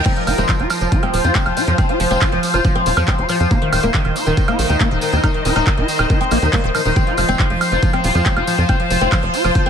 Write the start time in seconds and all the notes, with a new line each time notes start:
Already playing: D#4 A#4 D#5
0.06 F3 C4 F4 C5, kick, closed hi-hat, crash, tambourine
0.16 F3, closed hi-hat
0.27 F1 F3 F#4, open hi-hat, tambourine, high woodblock
0.38 F1 F3 C4, closed hi-hat, tambourine
0.49 F3 C5, kick, clap, closed hi-hat
0.60 F1 F3 F#4, closed hi-hat
0.70 F3, open hi-hat, tambourine, high woodblock
0.81 F1 F3, closed hi-hat, tambourine
0.92 F3 F#4, kick, closed hi-hat, tambourine
1.03 F3 C4, closed hi-hat, high woodblock
1.14 D#1 F3 F5, open hi-hat, tambourine
1.24 F2 F3 F#4, closed hi-hat, tambourine
1.34 F3 C4, kick, clap, closed hi-hat, tambourine
1.46 F1 F3, closed hi-hat, high woodblock
1.57 F3 F#4, open hi-hat, tambourine
1.67 F2 F3, closed hi-hat, tambourine
1.78 C4, kick, closed hi-hat, tambourine, high woodblock
1.89 F3 F#4, closed hi-hat
2.00 F1 F3, open hi-hat, tambourine
2.11 F1 C4, closed hi-hat, tambourine
2.21 F3 F#4, kick, clap, closed hi-hat, high woodblock
2.32 F1 F3, closed hi-hat
2.43 open hi-hat, tambourine
2.54 F1 F3 F#4, closed hi-hat, tambourine, high woodblock
2.64 F3, kick, closed hi-hat, tambourine
2.75 C4, closed hi-hat
2.86 D#1 F3 F#4, open hi-hat, tambourine
2.96 F2 F3, closed hi-hat, tambourine, high woodblock
3.08 C4, kick, clap, closed hi-hat, tambourine
3.19 F1 F3 F#4, closed hi-hat
3.29 F3, open hi-hat, tambourine, high woodblock
3.40 F2 F3, closed hi-hat, tambourine
3.51 A#3 D#4 F4, kick, closed hi-hat, tambourine
3.62 D#3, closed hi-hat
3.73 D#1 D#3, open hi-hat, tambourine, high woodblock
3.83 D#1 A#3 F4 A#4, tambourine
3.94 D#3, kick, clap, closed hi-hat, tambourine
4.05 D#1 D#3, closed hi-hat, high woodblock
4.16 F4, open hi-hat, tambourine
4.26 D#1 D#3, closed hi-hat, tambourine
4.37 D#3, kick, closed hi-hat, tambourine
4.48 A#3 F4, closed hi-hat, high woodblock
4.52 D#5
4.59 A#1 D#3, open hi-hat, tambourine
4.69 D#2 D#3, tambourine
4.80 A#3 F4, kick, clap, closed hi-hat, tambourine, high woodblock
4.91 D#1 D#3, closed hi-hat
5.01 D#3, open hi-hat, tambourine
5.13 D#2 D#3 F4, closed hi-hat, tambourine
5.24 D#3 D#4, kick, closed hi-hat, tambourine, high woodblock
5.34 D#3, closed hi-hat
5.45 D#1 D#3 F4, open hi-hat, tambourine
5.56 D#1 D#3 D#4, closed hi-hat, tambourine, high woodblock
5.67 D#3, kick, clap, closed hi-hat
5.78 D#1 D#3 F4, closed hi-hat
5.88 D#3, open hi-hat, tambourine
5.99 D#1 D#3, closed hi-hat, tambourine, high woodblock
6.10 D#3 F4, kick, closed hi-hat, tambourine
6.21 D#3 C4, closed hi-hat
6.31 A#1 D#3 A#3, open hi-hat, tambourine, high woodblock
6.42 D#2 D#3 F3, closed hi-hat, tambourine
6.53 G3 A#3, kick, clap, closed hi-hat, tambourine
6.64 D#1 D#3, closed hi-hat
6.75 D#3 F3, open hi-hat, tambourine, high woodblock
6.85 D#1 D#3, closed hi-hat, tambourine
6.96 C4 F4, kick, closed hi-hat, tambourine
7.07 F3 F#4, closed hi-hat
7.17 F1 F3, open hi-hat, tambourine, high woodblock
7.28 F1 C4, closed hi-hat, tambourine
7.39 F3 F#4, kick, clap, closed hi-hat, tambourine
7.50 F1 F3, closed hi-hat
7.61 C5, open hi-hat, tambourine, high woodblock
7.72 F1 F3 F#4, closed hi-hat, tambourine
7.77 F5
7.83 F3, kick, closed hi-hat, tambourine
7.93 C4, closed hi-hat, high woodblock
8.04 D#1 F3 F#4, open hi-hat, tambourine
8.15 F2 F3, closed hi-hat, tambourine
8.26 C4, kick, clap, closed hi-hat
8.37 F1 F3 F#4, closed hi-hat, high woodblock
8.47 F3, open hi-hat, tambourine
8.58 F2 F3, closed hi-hat, tambourine
8.69 C4 F#4, kick, closed hi-hat, tambourine, high woodblock
8.80 F3, closed hi-hat
8.90 F1 F3, open hi-hat, tambourine
9.01 F1 C4 F#4, tambourine
9.12 F3, kick, clap, closed hi-hat, tambourine, high woodblock
9.23 F1 F3, closed hi-hat
9.34 F#4, open hi-hat, tambourine
9.44 F1 F3, closed hi-hat, tambourine, high woodblock
9.55 F3, kick, closed hi-hat, tambourine
9.66 C4 F#4, closed hi-hat